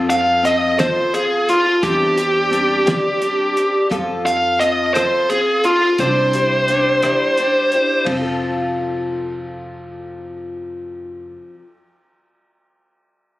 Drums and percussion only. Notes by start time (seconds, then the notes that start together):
0.10 closed hi-hat
0.45 closed hi-hat
0.79 snare, closed hi-hat
1.14 closed hi-hat
1.49 closed hi-hat
1.83 kick, closed hi-hat
2.18 closed hi-hat
2.53 closed hi-hat
2.87 snare, closed hi-hat
3.22 closed hi-hat
3.57 closed hi-hat
3.91 kick, closed hi-hat
4.27 closed hi-hat
4.61 closed hi-hat
4.95 cross-stick, closed hi-hat
5.30 closed hi-hat
5.64 closed hi-hat
5.98 kick, closed hi-hat
6.33 closed hi-hat
6.68 closed hi-hat
7.02 cross-stick, closed hi-hat
7.37 closed hi-hat
7.72 closed hi-hat
8.06 kick, ride